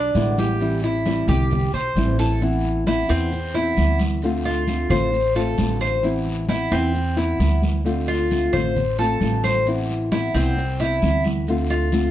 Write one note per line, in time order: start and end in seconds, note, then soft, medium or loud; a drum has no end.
0.00 0.11 B1 loud
0.00 0.37 D4 medium
0.15 1.22 A1 medium
0.15 0.37 B2 medium
0.15 0.37 D3 medium
0.15 0.37 G#3 medium
0.15 0.37 B3 medium
0.15 0.37 E4 medium
0.15 high conga medium
0.15 short guiro medium
0.15 maracas medium
0.38 0.60 G#3 soft
0.38 0.60 B3 soft
0.38 0.60 E4 soft
0.38 0.82 G4 medium
0.38 high conga medium
0.38 short guiro medium
0.38 maracas soft
0.60 0.82 E3 medium
0.60 0.82 G3 medium
0.60 0.83 C4 medium
0.60 0.82 E4 medium
0.60 high conga soft
0.60 long guiro medium
0.60 maracas medium
0.83 1.05 G3 soft
0.83 1.05 C4 soft
0.83 1.05 E4 medium
0.83 1.27 E4 medium
0.83 high conga soft
0.83 maracas medium
1.05 1.27 E3 medium
1.05 1.28 G3 medium
1.05 1.28 C4 medium
1.05 1.28 E4 medium
1.05 high conga medium
1.05 short guiro medium
1.05 maracas medium
1.28 1.70 C2 loud
1.28 1.51 G3 soft
1.28 1.51 C4 soft
1.28 1.50 E4 soft
1.28 1.72 G4 medium
1.28 high conga loud
1.28 low conga medium
1.28 short guiro medium
1.28 maracas soft
1.51 muted nylon-string guitar stroke medium
1.51 high conga soft
1.51 low conga medium
1.51 long guiro medium
1.51 maracas medium
1.73 1.94 B1 medium
1.73 2.18 C5 medium
1.73 high conga soft
1.96 3.03 A1 medium
1.96 2.18 E3 medium
1.96 2.18 G3 medium
1.96 2.19 C4 medium
1.96 2.18 E4 medium
1.96 high conga medium
1.96 short guiro medium
1.96 maracas medium
2.19 2.42 G3 soft
2.19 2.41 C4 soft
2.19 2.41 E4 soft
2.19 2.41 A4 medium
2.19 high conga soft
2.19 short guiro medium
2.19 maracas soft
2.41 2.85 E3 medium
2.41 2.86 B3 medium
2.41 2.86 C4 medium
2.41 2.87 E4 medium
2.41 high conga soft
2.41 long guiro medium
2.41 maracas medium
2.64 high conga soft
2.64 maracas soft
2.86 3.08 E3 medium
2.86 3.09 B3 medium
2.86 3.09 C4 medium
2.86 3.09 E4 medium
2.86 3.07 E4 medium
2.86 high conga loud
2.86 short guiro medium
2.86 maracas medium
3.09 3.73 E2 medium
3.09 3.31 B3 medium
3.09 3.53 C4 medium
3.09 3.31 C4 medium
3.09 3.31 E4 medium
3.09 high conga soft
3.09 short guiro medium
3.09 maracas soft
3.32 muted nylon-string guitar stroke medium
3.32 high conga soft
3.32 long guiro medium
3.32 maracas medium
3.54 3.77 B3 medium
3.54 3.77 C4 medium
3.54 3.98 E4 medium
3.54 3.77 E4 medium
3.54 high conga soft
3.54 maracas soft
3.77 4.84 D2 medium
3.77 4.22 E3 soft
3.77 4.22 B3 medium
3.77 4.22 C4 medium
3.77 4.23 E4 medium
3.77 high conga medium
3.77 short guiro medium
3.77 maracas medium
3.99 high conga medium
3.99 short guiro medium
3.99 maracas soft
4.22 4.66 D3 medium
4.22 4.67 A3 medium
4.22 4.68 C4 medium
4.22 4.68 F4 medium
4.22 high conga soft
4.22 long guiro medium
4.22 maracas medium
4.45 4.89 F4 medium
4.45 high conga soft
4.45 maracas soft
4.67 4.89 D3 medium
4.67 4.90 A3 medium
4.67 4.90 C4 medium
4.67 4.89 F4 medium
4.67 high conga medium
4.67 short guiro medium
4.67 maracas medium
4.90 5.54 A1 medium
4.90 5.12 A3 medium
4.90 5.12 C4 medium
4.90 5.12 F4 medium
4.90 5.34 C5 medium
4.90 high conga soft
4.90 low conga medium
4.90 short guiro medium
4.90 maracas soft
5.12 muted nylon-string guitar stroke medium
5.12 high conga soft
5.12 long guiro medium
5.12 maracas medium
5.35 5.58 A3 medium
5.35 5.58 C4 medium
5.35 5.57 F4 medium
5.35 5.80 A4 medium
5.35 high conga soft
5.35 maracas soft
5.58 6.65 A1 medium
5.58 6.02 D3 medium
5.58 6.03 A3 medium
5.58 6.02 C4 medium
5.58 6.04 F4 medium
5.58 high conga medium
5.58 short guiro medium
5.58 maracas medium
5.81 6.03 C5 medium
5.81 short guiro medium
5.81 maracas soft
6.03 6.47 E3 medium
6.03 6.48 B3 medium
6.03 6.48 C4 medium
6.03 6.49 E4 medium
6.03 high conga soft
6.03 long guiro medium
6.03 maracas medium
6.27 high conga soft
6.27 maracas soft
6.48 6.70 E3 medium
6.48 6.71 B3 medium
6.48 6.71 C4 medium
6.48 6.71 E4 medium
6.48 6.70 E4 medium
6.48 high conga loud
6.48 short guiro medium
6.48 maracas medium
6.72 7.36 E2 medium
6.72 6.93 B3 medium
6.72 7.16 C4 medium
6.72 6.93 C4 medium
6.72 6.93 E4 medium
6.72 high conga soft
6.72 short guiro medium
6.72 maracas soft
6.94 muted nylon-string guitar stroke medium
6.94 high conga soft
6.94 long guiro medium
6.94 maracas medium
7.17 7.39 B3 medium
7.17 7.39 C4 medium
7.17 7.38 E4 medium
7.17 7.61 E4 medium
7.17 high conga soft
7.17 maracas soft
7.40 8.46 D2 medium
7.40 7.84 E3 soft
7.40 7.85 B3 medium
7.40 7.84 C4 medium
7.40 7.85 E4 medium
7.40 high conga medium
7.40 short guiro medium
7.40 maracas medium
7.62 high conga medium
7.62 short guiro medium
7.62 maracas soft
7.84 8.29 D3 medium
7.84 8.30 A3 medium
7.84 8.30 C4 medium
7.84 8.30 F4 medium
7.84 high conga soft
7.84 long guiro medium
7.84 maracas medium
8.08 8.52 F4 medium
8.08 high conga soft
8.08 maracas soft
8.30 8.52 D3 medium
8.30 8.52 A3 soft
8.30 8.53 C4 soft
8.30 8.52 F4 medium
8.30 high conga medium
8.30 short guiro medium
8.30 maracas medium
8.53 9.17 A1 medium
8.53 8.75 A3 medium
8.53 8.75 C4 medium
8.53 8.75 F4 medium
8.53 8.97 C5 medium
8.53 high conga soft
8.53 low conga medium
8.53 short guiro medium
8.53 maracas soft
8.76 muted nylon-string guitar stroke medium
8.76 high conga soft
8.76 low conga medium
8.76 long guiro medium
8.76 maracas medium
8.99 9.21 A3 medium
8.99 9.21 C4 medium
8.99 9.20 F4 medium
8.99 9.42 A4 medium
8.99 high conga soft
8.99 maracas soft
9.20 10.28 A1 medium
9.20 9.65 D3 soft
9.20 9.66 A3 medium
9.20 9.66 C4 medium
9.20 9.66 F4 medium
9.20 high conga medium
9.20 short guiro medium
9.20 maracas medium
9.44 9.66 C5 medium
9.44 high conga medium
9.44 short guiro medium
9.44 maracas soft
9.66 10.11 E3 medium
9.66 10.11 B3 medium
9.66 10.11 C4 medium
9.66 10.12 E4 medium
9.66 long guiro medium
9.66 maracas medium
9.90 high conga soft
9.90 maracas soft
10.12 10.33 E3 medium
10.12 10.34 B3 medium
10.12 10.34 C4 medium
10.12 10.33 E4 medium
10.12 high conga medium
10.12 short guiro medium
10.12 maracas medium
10.34 10.98 C2 medium
10.34 10.56 B3 medium
10.34 10.78 C4 medium
10.34 10.57 C4 medium
10.34 10.56 E4 medium
10.34 high conga soft
10.34 short guiro medium
10.34 maracas soft
10.57 muted nylon-string guitar stroke medium
10.57 high conga soft
10.57 long guiro medium
10.57 maracas medium
10.80 11.02 B3 medium
10.80 11.03 C4 medium
10.80 11.24 E4 medium
10.80 11.02 E4 medium
10.80 high conga soft
10.80 maracas soft
11.02 12.09 D2 medium
11.02 11.47 E3 soft
11.02 11.48 B3 medium
11.02 11.47 C4 medium
11.02 11.48 E4 medium
11.02 high conga medium
11.02 short guiro medium
11.02 maracas medium
11.24 high conga medium
11.24 short guiro medium
11.24 maracas soft
11.47 11.92 D3 medium
11.47 11.92 A3 medium
11.47 11.93 C4 medium
11.47 11.93 F4 medium
11.47 high conga soft
11.47 long guiro medium
11.47 maracas medium
11.70 12.11 F4 medium
11.70 high conga soft
11.70 maracas soft
11.92 12.11 D3 medium
11.92 12.11 A3 soft
11.92 12.11 C4 medium
11.92 12.11 F4 medium
11.92 high conga medium
11.92 short guiro medium
11.92 maracas medium